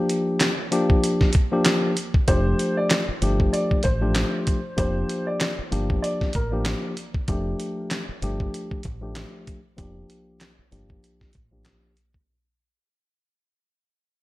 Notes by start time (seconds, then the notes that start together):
Already playing: F3 A#3 D4 G4
0.09 closed hi-hat
0.40 snare, clap, closed hi-hat
0.71 F3 A#3 D4 G4, closed hi-hat
0.90 kick
1.04 closed hi-hat
1.21 kick, snare
1.33 kick, closed hi-hat
1.52 F3 A#3 D4 G4
1.65 snare, clap, closed hi-hat
1.97 closed hi-hat
2.14 kick
2.28 F1 F3 A3 D4 G4 C5, kick, closed hi-hat
2.59 closed hi-hat
2.77 D5
2.90 snare, clap, closed hi-hat
3.09 muted fingered electric bass stroke
3.22 G1 F3 A3 D4 G4, closed hi-hat
3.40 kick
3.53 D5, closed hi-hat
3.71 kick
3.83 A1 C5, kick, closed hi-hat
4.01 F3 A3 D4 G4
4.15 snare, clap, closed hi-hat
4.47 kick, closed hi-hat
4.76 F1 F3 A#3 D4 G4 C5, kick, closed hi-hat
5.09 closed hi-hat
5.27 D5
5.40 snare, clap, closed hi-hat
5.59 muted fingered electric bass stroke
5.71 G1 F3 A#3 D4 G4, closed hi-hat
5.90 kick
6.02 D5, closed hi-hat
6.21 kick, snare
6.33 A1 A#4, kick, closed hi-hat
6.52 F3 A#3 D4 G4
6.65 snare, clap, closed hi-hat
6.97 closed hi-hat
7.14 kick
7.28 F1 F3 A3 D4 G4, kick, closed hi-hat
7.60 closed hi-hat
7.91 snare, clap, closed hi-hat
8.09 muted fingered electric bass stroke
8.22 G1 F3 A3 D4 G4, closed hi-hat
8.40 kick
8.54 closed hi-hat
8.71 kick
8.83 A1, kick, closed hi-hat
9.01 F3 A3 D4 G4
9.15 snare, clap, closed hi-hat
9.47 kick, closed hi-hat
9.77 F1 F3 A#3 D4 G4, kick, closed hi-hat
10.10 closed hi-hat
10.41 snare, clap, closed hi-hat
10.59 muted fingered electric bass stroke
10.71 G1 F3 A#3 D4 G4, closed hi-hat
10.90 kick
11.04 closed hi-hat
11.21 kick, snare
11.33 A1, kick, closed hi-hat
11.52 F3 A#3 D4 G4
11.65 snare, clap, closed hi-hat
11.97 closed hi-hat
12.14 kick